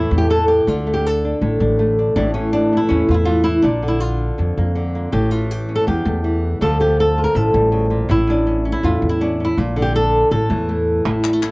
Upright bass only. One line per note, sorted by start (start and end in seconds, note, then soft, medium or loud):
0.11 0.60 E2 medium
0.67 1.32 D2 medium
1.41 1.58 A1 medium
1.60 2.09 A1 medium
2.16 2.80 A1 loud
2.90 3.06 E2 medium
3.09 3.57 E2 medium
3.64 4.29 A#1 loud
4.39 4.55 F2 medium
4.57 5.06 F2 medium
5.13 5.77 A1 loud
5.87 6.03 E2 medium
6.05 6.54 E2 medium
6.61 7.25 D2 loud
7.35 7.51 A1 loud
7.54 8.02 A1 medium
8.09 8.73 A1 loud
8.83 8.99 E2 medium
9.02 9.50 E2 medium
9.57 10.22 A#1 loud
10.31 10.47 A1 medium
10.50 10.98 E2 loud
11.05 11.51 A1 medium